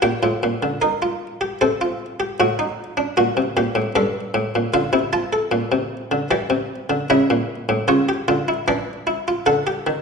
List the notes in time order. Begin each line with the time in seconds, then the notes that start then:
0.02 A#2 G4 G5
0.23 A2 F4
0.43 A#2
0.63 D3
0.82 D#4 A#4
1.02 F4
1.41 G4
1.61 C3 A4 C5
1.81 F4
2.20 G4
2.40 A2 F#4
2.59 D#4
2.97 D4
3.17 A#2 F#4
3.37 C3
3.57 A#2 G4
3.75 A2
3.96 G2 A4 D5
4.34 A2
4.55 A#2
4.74 D3 F4 F5
4.93 C3 E4
5.13 F4 A5
5.33 A4
5.52 A#2
5.72 C3
6.11 D3
6.31 E3 G4 D5
6.50 C3
6.90 D3
7.10 C#3 E4 E5
7.30 A#2
7.69 A2
7.88 C#3 F4 C#5
8.09 G4
8.28 D3 F4
8.48 E4
8.68 E3 D4 D5
9.07 E4
9.28 F4
9.46 D3 A4 F#5
9.67 G4
9.87 D#3